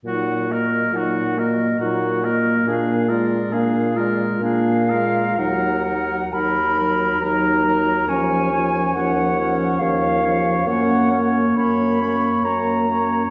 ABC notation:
X:1
M:3/4
L:1/8
Q:1/4=69
K:Ebm
V:1 name="Flute"
g e g e g e | f =d f d f2 | g2 c'2 b2 | a2 g2 f2 |
g z c'2 b2 |]
V:2 name="Oboe"
G B G B G B | A B A B A B | B B B B B B | d d d d d d |
d d d d d d |]
V:3 name="Clarinet"
E G E G E G | =D F D F D F | E E E E E E | D D D D D D |
D D D D D D |]
V:4 name="French horn" clef=bass
G, B, G, B, G, B, | B, A, B, A, B, A, | G, G, G, G, G, G, | F, F, F, F, F, F, |
B, B, B, B, B, B, |]
V:5 name="Bassoon" clef=bass
B,,2 B,,2 B,,2 | B,,2 B,,2 B,,2 | E,,2 E,,2 E,,2 | E,,2 E,,2 E,,2 |
G,,2 G,,2 G,,2 |]